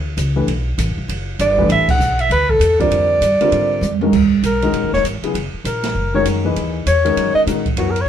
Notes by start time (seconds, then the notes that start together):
Already playing: D2
0.17 C#2, hi-hat pedal, ride
0.36 E3 A3 D4 G4 B4
0.47 B1, ride
0.78 A1, hi-hat pedal, ride
0.88 E1
0.98 B1
1.08 F#1, ride
1.39 G1 D5, hi-hat pedal, ride
1.58 E3 A3 D4 G4 B4, kick
1.69 A1 E5, ride
1.88 F#5, muted upright bass stroke, kick, crash
1.99 B1, hi-hat pedal
2.19 E5, ride
2.30 D2 B4, ride
2.49 A4, kick
2.59 E2, hi-hat pedal, ride
2.79 D3 G3 C4 F4 A#4 D5, kick, ride
2.91 F2, ride
3.21 G2, hi-hat pedal, ride
3.41 D3 G3 C4 F4 A#4, muted upright bass stroke, ride
3.52 G#2, ride
3.81 F2, hi-hat pedal, high tom
4.01 D#3 G#3 C#4 F#4 A#4, high tom
4.13 D#2, kick, crash
4.43 B1 A#4, hi-hat pedal, ride
4.62 D#3 G#3 C#4 F#4 A#4, ride
4.73 A#1, ride
4.83 F#1
4.93 D#1 C#5, snare
5.03 G#1, hi-hat pedal, ride
5.22 C#3 F#3 B3 E4 G#4, muted upright bass stroke, ride
5.34 F#1, ride
5.53 muted upright bass stroke
5.64 A#1 A#4, hi-hat pedal, ride
5.83 snare, ride
5.95 F#1
6.14 D#3 G#3 C#4 F#4 A#4 C#5
6.25 F#2, hi-hat pedal, ride
6.45 A#2 E3 D#4 G#4 B4
6.56 D#2, ride
6.86 E2 C#5, hi-hat pedal, ride
7.05 D#3 G#3 C#4 F#4 A#4, ride
7.16 F#2, ride
7.35 D#5, muted upright bass stroke
7.47 A#2 D#3 G#3 C#4 F#4 A#4, hi-hat pedal, ride
7.66 kick, ride
7.76 F#2 F#3 B3 E4 F#4 A#4 C#5, ride
7.91 A#4
7.96 ride
8.01 C#5